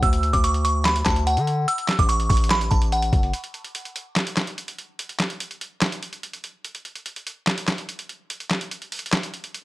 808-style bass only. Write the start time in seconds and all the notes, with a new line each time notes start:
0.02 D2
0.33 D2
1.06 D2
1.37 D3
1.99 A1
2.30 A1
2.71 A1
3.13 F#1